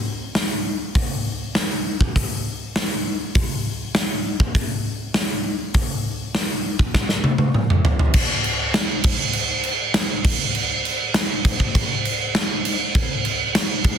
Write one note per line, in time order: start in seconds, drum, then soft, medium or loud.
0.35 snare loud
0.35 open hi-hat medium
0.95 kick loud
0.95 open hi-hat medium
1.55 snare medium
1.55 open hi-hat soft
2.01 kick medium
2.16 kick medium
2.16 open hi-hat medium
2.76 snare loud
2.76 open hi-hat soft
3.35 kick loud
3.35 open hi-hat medium
3.95 snare loud
3.95 open hi-hat soft
4.40 kick medium
4.55 kick medium
4.55 open hi-hat soft
5.14 snare loud
5.14 open hi-hat soft
5.74 kick loud
5.74 open hi-hat soft
6.35 snare medium
6.35 open hi-hat medium
6.79 kick medium
6.94 kick medium
6.94 snare medium
7.09 snare medium
7.24 high tom medium
7.38 high tom medium
7.54 mid tom medium
7.70 mid tom medium
7.85 floor tom loud
7.99 floor tom medium
8.14 kick loud
8.14 crash loud
8.14 crash medium
8.44 crash medium
8.74 snare loud
8.74 crash medium
9.04 kick loud
9.04 crash loud
9.33 crash medium
9.64 crash medium
9.94 snare loud
9.94 crash medium
10.25 kick loud
10.25 crash loud
10.55 crash medium
10.85 crash medium
11.14 snare loud
11.14 crash medium
11.45 kick loud
11.45 crash medium
11.60 kick medium
11.75 kick medium
11.75 crash medium
12.05 crash medium
12.35 snare loud
12.35 crash medium
12.65 crash medium
12.95 kick loud
12.95 crash medium
13.25 crash medium
13.55 snare loud
13.55 crash medium
13.84 kick loud
13.84 crash medium